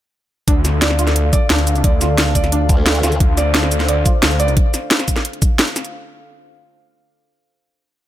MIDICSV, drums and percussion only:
0, 0, Header, 1, 2, 480
1, 0, Start_track
1, 0, Key_signature, -1, "minor"
1, 0, Tempo, 340909
1, 670, Time_signature, 4, 2, 24, 8
1, 11375, End_track
2, 0, Start_track
2, 0, Title_t, "Drums"
2, 671, Note_on_c, 9, 36, 116
2, 671, Note_on_c, 9, 42, 99
2, 812, Note_off_c, 9, 36, 0
2, 812, Note_off_c, 9, 42, 0
2, 912, Note_on_c, 9, 40, 37
2, 912, Note_on_c, 9, 42, 65
2, 912, Note_on_c, 9, 82, 58
2, 1052, Note_off_c, 9, 40, 0
2, 1052, Note_off_c, 9, 42, 0
2, 1052, Note_off_c, 9, 82, 0
2, 1151, Note_on_c, 9, 38, 120
2, 1151, Note_on_c, 9, 42, 96
2, 1271, Note_on_c, 9, 40, 58
2, 1292, Note_off_c, 9, 38, 0
2, 1292, Note_off_c, 9, 42, 0
2, 1392, Note_on_c, 9, 42, 69
2, 1392, Note_on_c, 9, 82, 60
2, 1412, Note_off_c, 9, 40, 0
2, 1512, Note_off_c, 9, 42, 0
2, 1512, Note_on_c, 9, 38, 37
2, 1512, Note_on_c, 9, 40, 39
2, 1512, Note_on_c, 9, 42, 39
2, 1532, Note_off_c, 9, 82, 0
2, 1631, Note_off_c, 9, 42, 0
2, 1631, Note_on_c, 9, 42, 96
2, 1652, Note_off_c, 9, 38, 0
2, 1652, Note_off_c, 9, 40, 0
2, 1772, Note_off_c, 9, 42, 0
2, 1871, Note_on_c, 9, 36, 112
2, 1871, Note_on_c, 9, 42, 68
2, 1871, Note_on_c, 9, 82, 59
2, 2012, Note_off_c, 9, 36, 0
2, 2012, Note_off_c, 9, 42, 0
2, 2012, Note_off_c, 9, 82, 0
2, 2112, Note_on_c, 9, 38, 117
2, 2112, Note_on_c, 9, 42, 98
2, 2232, Note_off_c, 9, 42, 0
2, 2232, Note_on_c, 9, 42, 41
2, 2252, Note_off_c, 9, 38, 0
2, 2352, Note_off_c, 9, 42, 0
2, 2352, Note_on_c, 9, 42, 70
2, 2352, Note_on_c, 9, 82, 59
2, 2472, Note_off_c, 9, 42, 0
2, 2472, Note_off_c, 9, 82, 0
2, 2472, Note_on_c, 9, 42, 38
2, 2472, Note_on_c, 9, 82, 27
2, 2591, Note_off_c, 9, 42, 0
2, 2591, Note_on_c, 9, 36, 122
2, 2591, Note_on_c, 9, 42, 100
2, 2613, Note_off_c, 9, 82, 0
2, 2732, Note_off_c, 9, 36, 0
2, 2732, Note_off_c, 9, 42, 0
2, 2831, Note_on_c, 9, 40, 36
2, 2831, Note_on_c, 9, 42, 67
2, 2831, Note_on_c, 9, 82, 56
2, 2972, Note_off_c, 9, 40, 0
2, 2972, Note_off_c, 9, 42, 0
2, 2972, Note_off_c, 9, 82, 0
2, 3071, Note_on_c, 9, 38, 127
2, 3071, Note_on_c, 9, 42, 92
2, 3212, Note_off_c, 9, 38, 0
2, 3212, Note_off_c, 9, 42, 0
2, 3311, Note_on_c, 9, 36, 63
2, 3312, Note_on_c, 9, 42, 65
2, 3312, Note_on_c, 9, 82, 58
2, 3432, Note_off_c, 9, 42, 0
2, 3432, Note_on_c, 9, 40, 39
2, 3432, Note_on_c, 9, 42, 38
2, 3452, Note_off_c, 9, 36, 0
2, 3453, Note_off_c, 9, 82, 0
2, 3552, Note_off_c, 9, 42, 0
2, 3552, Note_on_c, 9, 42, 93
2, 3573, Note_off_c, 9, 40, 0
2, 3693, Note_off_c, 9, 42, 0
2, 3791, Note_on_c, 9, 36, 113
2, 3792, Note_on_c, 9, 42, 70
2, 3792, Note_on_c, 9, 82, 60
2, 3932, Note_off_c, 9, 36, 0
2, 3933, Note_off_c, 9, 42, 0
2, 3933, Note_off_c, 9, 82, 0
2, 4032, Note_on_c, 9, 38, 125
2, 4032, Note_on_c, 9, 42, 96
2, 4152, Note_off_c, 9, 42, 0
2, 4152, Note_on_c, 9, 42, 37
2, 4172, Note_off_c, 9, 38, 0
2, 4272, Note_off_c, 9, 42, 0
2, 4272, Note_on_c, 9, 40, 59
2, 4272, Note_on_c, 9, 42, 66
2, 4272, Note_on_c, 9, 82, 59
2, 4392, Note_off_c, 9, 42, 0
2, 4392, Note_off_c, 9, 82, 0
2, 4392, Note_on_c, 9, 42, 36
2, 4392, Note_on_c, 9, 82, 26
2, 4413, Note_off_c, 9, 40, 0
2, 4511, Note_off_c, 9, 42, 0
2, 4511, Note_on_c, 9, 36, 124
2, 4511, Note_on_c, 9, 42, 90
2, 4532, Note_off_c, 9, 82, 0
2, 4652, Note_off_c, 9, 36, 0
2, 4652, Note_off_c, 9, 42, 0
2, 4751, Note_on_c, 9, 40, 37
2, 4751, Note_on_c, 9, 42, 65
2, 4751, Note_on_c, 9, 82, 56
2, 4892, Note_off_c, 9, 40, 0
2, 4892, Note_off_c, 9, 42, 0
2, 4892, Note_off_c, 9, 82, 0
2, 4991, Note_on_c, 9, 38, 125
2, 4991, Note_on_c, 9, 42, 96
2, 5110, Note_on_c, 9, 40, 57
2, 5132, Note_off_c, 9, 38, 0
2, 5132, Note_off_c, 9, 42, 0
2, 5231, Note_on_c, 9, 42, 65
2, 5231, Note_on_c, 9, 82, 56
2, 5251, Note_off_c, 9, 40, 0
2, 5350, Note_off_c, 9, 42, 0
2, 5350, Note_on_c, 9, 38, 38
2, 5350, Note_on_c, 9, 40, 38
2, 5350, Note_on_c, 9, 42, 38
2, 5372, Note_off_c, 9, 82, 0
2, 5470, Note_off_c, 9, 42, 0
2, 5470, Note_on_c, 9, 42, 92
2, 5491, Note_off_c, 9, 38, 0
2, 5491, Note_off_c, 9, 40, 0
2, 5611, Note_off_c, 9, 42, 0
2, 5711, Note_on_c, 9, 36, 116
2, 5711, Note_on_c, 9, 42, 67
2, 5711, Note_on_c, 9, 82, 57
2, 5852, Note_off_c, 9, 36, 0
2, 5852, Note_off_c, 9, 42, 0
2, 5852, Note_off_c, 9, 82, 0
2, 5951, Note_on_c, 9, 38, 127
2, 5951, Note_on_c, 9, 42, 92
2, 6071, Note_off_c, 9, 42, 0
2, 6071, Note_on_c, 9, 42, 38
2, 6091, Note_off_c, 9, 38, 0
2, 6191, Note_off_c, 9, 42, 0
2, 6191, Note_on_c, 9, 42, 64
2, 6191, Note_on_c, 9, 82, 56
2, 6311, Note_off_c, 9, 42, 0
2, 6311, Note_off_c, 9, 82, 0
2, 6311, Note_on_c, 9, 42, 34
2, 6311, Note_on_c, 9, 82, 25
2, 6430, Note_off_c, 9, 42, 0
2, 6430, Note_on_c, 9, 42, 92
2, 6431, Note_on_c, 9, 36, 123
2, 6451, Note_off_c, 9, 82, 0
2, 6571, Note_off_c, 9, 36, 0
2, 6571, Note_off_c, 9, 42, 0
2, 6671, Note_on_c, 9, 40, 35
2, 6671, Note_on_c, 9, 42, 65
2, 6671, Note_on_c, 9, 82, 59
2, 6811, Note_off_c, 9, 40, 0
2, 6811, Note_off_c, 9, 42, 0
2, 6811, Note_off_c, 9, 82, 0
2, 6911, Note_on_c, 9, 38, 121
2, 6911, Note_on_c, 9, 42, 92
2, 7031, Note_on_c, 9, 40, 56
2, 7031, Note_on_c, 9, 82, 28
2, 7051, Note_off_c, 9, 38, 0
2, 7051, Note_off_c, 9, 42, 0
2, 7151, Note_off_c, 9, 82, 0
2, 7151, Note_on_c, 9, 36, 65
2, 7151, Note_on_c, 9, 42, 62
2, 7151, Note_on_c, 9, 82, 57
2, 7172, Note_off_c, 9, 40, 0
2, 7271, Note_off_c, 9, 42, 0
2, 7271, Note_on_c, 9, 38, 39
2, 7271, Note_on_c, 9, 40, 35
2, 7271, Note_on_c, 9, 42, 36
2, 7291, Note_off_c, 9, 36, 0
2, 7291, Note_off_c, 9, 82, 0
2, 7391, Note_off_c, 9, 42, 0
2, 7391, Note_on_c, 9, 42, 89
2, 7412, Note_off_c, 9, 38, 0
2, 7412, Note_off_c, 9, 40, 0
2, 7510, Note_off_c, 9, 42, 0
2, 7510, Note_on_c, 9, 42, 34
2, 7631, Note_off_c, 9, 42, 0
2, 7631, Note_on_c, 9, 36, 114
2, 7631, Note_on_c, 9, 42, 65
2, 7631, Note_on_c, 9, 82, 58
2, 7771, Note_off_c, 9, 36, 0
2, 7772, Note_off_c, 9, 42, 0
2, 7772, Note_off_c, 9, 82, 0
2, 7871, Note_on_c, 9, 38, 125
2, 7871, Note_on_c, 9, 42, 87
2, 7991, Note_off_c, 9, 42, 0
2, 7991, Note_on_c, 9, 42, 36
2, 8012, Note_off_c, 9, 38, 0
2, 8111, Note_off_c, 9, 42, 0
2, 8111, Note_on_c, 9, 40, 53
2, 8111, Note_on_c, 9, 42, 63
2, 8111, Note_on_c, 9, 82, 58
2, 8231, Note_off_c, 9, 42, 0
2, 8231, Note_off_c, 9, 82, 0
2, 8231, Note_on_c, 9, 42, 35
2, 8231, Note_on_c, 9, 82, 27
2, 8252, Note_off_c, 9, 40, 0
2, 8371, Note_off_c, 9, 42, 0
2, 8371, Note_off_c, 9, 82, 0
2, 11375, End_track
0, 0, End_of_file